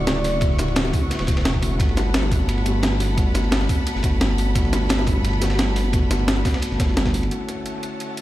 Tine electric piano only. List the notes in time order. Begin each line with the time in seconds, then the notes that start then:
Already playing: C#3 A3 C#4 E4 F#4
0.40 C#3 A3 E4 F#4
1.62 A3 C#4 E4 F#4
1.78 A3 B3 D4 F#4
2.64 A3 B3 D4 F#4
3.16 A3 B3 D4 F#4
4.02 A3 B3 D4 F#4
4.54 A3 B3 D4 F#4
5.40 A3 B3 D4 F#4
5.92 A3 B3 D4 F#4
6.78 A3 B3 D4 F#4
7.29 D3 A3 C#4 E4 F#4